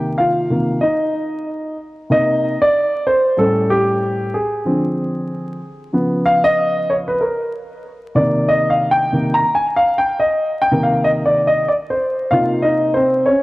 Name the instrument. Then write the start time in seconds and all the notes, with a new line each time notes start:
grand piano
Already playing: C3 D#3 A#3 G4 G5
0.18 F4 F5
0.50 C3 D#3 A#3
0.81 D#4 D#5
2.10 C3 A#3 D#4 D#5
2.62 D5
3.07 C5
3.37 A2 G3 C#4 A4
3.70 G4
4.34 G#4
4.65 D3 F3 C4
5.93 C#3 F3 B3
6.26 F5
6.44 D#5
6.90 C#5
7.08 B4
7.21 A#4
8.15 C3 D#3 A#3 D5
8.48 D#5
8.70 F5
8.91 G5
9.12 C3 D#3 A#3
9.34 A#5
9.55 G#5
9.76 F5
9.98 G5
10.19 D#5
10.62 G5
10.71 C3 D#3 A#3
10.83 F5
11.04 D#5
11.26 D5
11.47 D#5
11.68 D5
11.90 C5
12.31 C3 A#3 D#4 F4 F5
12.62 D#4 D#5
12.94 C4 C5
13.26 C#4 C#5